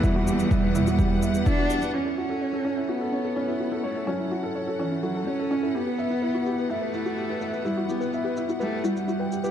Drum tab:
SH |x-xxx-xxx-xxx-xx|--------------xx|x-xx--xxx-xxx-xx|x-xxx-xxx-xxx-xx|
T2 |------o---------|----------------|----------------|----------------|
BD |o---o---o---o---|----------------|----------------|----------------|

SH |x-xxx-xxx-xxx-xx|
T2 |----------------|
BD |----------------|